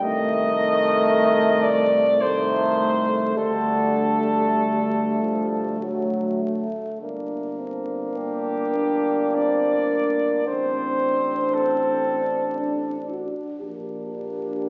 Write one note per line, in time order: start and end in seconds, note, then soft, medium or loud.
0.02 3.33 C2 medium
0.02 2.02 D#3 loud
0.02 2.15 A3 loud
0.02 2.02 A3 loud
0.02 1.64 D#5 loud
1.62 2.23 D5 loud
2.19 3.35 D#3 medium
2.19 3.35 A3 medium
2.19 3.38 A3 loud
2.19 3.37 C5 loud
3.37 6.63 D2 medium
3.37 4.46 D3 medium
3.37 5.79 G3 medium
3.37 5.77 A3 medium
3.37 5.77 A4 loud
4.61 5.17 D3 medium
5.21 5.83 F3 medium
5.80 6.65 F#3 medium
5.80 6.44 F#3 medium
5.80 6.66 A3 medium
6.43 7.01 A3 medium
7.01 10.41 G1 medium
7.01 10.48 A#3 medium
7.01 7.61 D4 medium
7.01 10.42 D4 medium
7.59 8.18 C4 medium
8.15 8.77 A#3 medium
8.15 9.36 G4 medium
8.75 9.37 D4 medium
9.35 9.91 C4 medium
9.35 10.46 D5 medium
9.92 10.48 A#3 medium
10.45 13.31 A1 medium
10.45 13.35 C4 medium
10.45 12.60 C4 medium
10.45 13.57 D4 medium
10.45 11.55 C5 medium
11.54 13.10 A4 medium
12.59 13.12 D4 medium
13.11 13.44 F#4 medium
13.61 14.69 A#1 medium
13.61 14.69 A#3 medium
13.61 14.69 D4 medium
13.61 14.69 G4 medium